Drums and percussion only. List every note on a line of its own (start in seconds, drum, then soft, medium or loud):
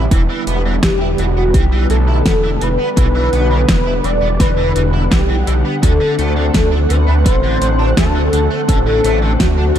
0.11 kick loud
0.11 closed hi-hat medium
0.47 closed hi-hat medium
0.83 kick loud
0.83 snare loud
0.83 closed hi-hat medium
1.18 closed hi-hat medium
1.54 kick loud
1.54 closed hi-hat medium
1.90 closed hi-hat medium
2.26 kick loud
2.26 snare loud
2.26 closed hi-hat medium
2.61 closed hi-hat medium
2.97 kick loud
2.97 closed hi-hat medium
3.33 closed hi-hat medium
3.69 kick loud
3.69 snare loud
3.69 closed hi-hat medium
4.04 closed hi-hat medium
4.40 kick loud
4.40 snare medium
4.40 closed hi-hat medium
4.76 closed hi-hat medium
5.11 kick loud
5.11 snare loud
5.11 closed hi-hat medium
5.47 closed hi-hat medium
5.83 kick loud
5.83 closed hi-hat medium
6.19 closed hi-hat medium
6.54 kick loud
6.54 snare loud
6.54 closed hi-hat medium
6.90 closed hi-hat medium
7.26 kick loud
7.26 closed hi-hat medium
7.62 closed hi-hat medium
7.97 kick loud
7.97 snare loud
7.97 closed hi-hat medium
8.33 closed hi-hat medium
8.69 kick loud
8.69 closed hi-hat medium
9.04 closed hi-hat medium
9.40 kick loud
9.40 snare loud
9.40 closed hi-hat medium
9.76 closed hi-hat medium